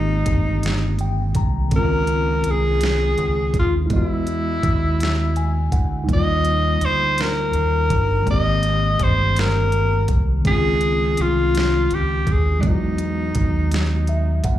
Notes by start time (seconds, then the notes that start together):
Already playing: G#1 D#3 G#3 A#3 C4 D#4 G4
0.26 G1, kick, closed hi-hat
0.63 snare, closed hi-hat
0.99 G5, closed hi-hat
1.35 C2 A#5, kick, closed hi-hat
1.68 D#3 G#3, kick, closed hi-hat
1.72 C#2 C4 C#4 A#4
1.78 F4
2.07 closed hi-hat
2.44 C2, closed hi-hat
2.50 G#4
2.81 snare, closed hi-hat
3.18 C#2, closed hi-hat
3.54 D#2, kick, closed hi-hat
3.59 F4
3.86 G#3 E4, closed hi-hat
3.90 E2 B3 D#5, kick
3.95 E4 F#4
4.27 closed hi-hat
4.63 D#2, kick, closed hi-hat
5.00 snare, closed hi-hat
5.36 G#5, closed hi-hat
5.72 D2 F#5, kick, closed hi-hat
6.04 G3 D#4
6.09 D#2 A#3, kick, closed hi-hat
6.13 F4 D#5
6.45 closed hi-hat
6.81 D2 C5, closed hi-hat
7.18 A#4, snare, closed hi-hat
7.53 D#2, closed hi-hat
7.90 G1, kick, closed hi-hat
8.23 D#3 G#3
8.27 G#1 A#3 C4 D#5, kick, closed hi-hat
8.32 G4
8.63 closed hi-hat
8.99 G1 C5, kick, closed hi-hat
9.36 A#4, snare, closed hi-hat
9.72 closed hi-hat
10.08 C2, kick, closed hi-hat
10.41 D#3 G#3, kick, closed hi-hat
10.45 C#2 C4 C#4 G#4
10.51 F4
10.81 closed hi-hat
11.17 C2, closed hi-hat
11.22 F4
11.55 snare, closed hi-hat
11.91 C#2, closed hi-hat
11.95 G4
12.27 D#2, kick, closed hi-hat
12.32 G#4
12.59 F#3 G#3 D4
12.63 E2 B3 D#5, kick, closed hi-hat
12.67 D#4 F4
12.75 F#4
12.98 closed hi-hat
13.35 D#2, kick, closed hi-hat
13.72 snare, closed hi-hat
14.07 E5, closed hi-hat
14.44 D2 F#5, kick, closed hi-hat